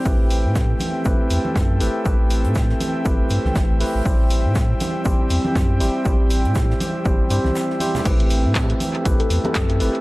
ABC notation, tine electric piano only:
X:1
M:4/4
L:1/8
Q:"Swing 16ths" 1/4=120
K:Am
V:1 name="Tine electric piano"
[A,CEGB]4 [A,CEGB]3 [A,CEGB] | [A,CEGB]4 [A,CEGB]3 [A,CEGB] | [G,CEGc]4 [G,CEGc]3 [G,CEGc] | [G,CEGc]4 [G,CEGc] [G,CEGc]2 [G,CEGc] |
[A,CEGB]4 [A,CEGB]3 [A,CEGB] |]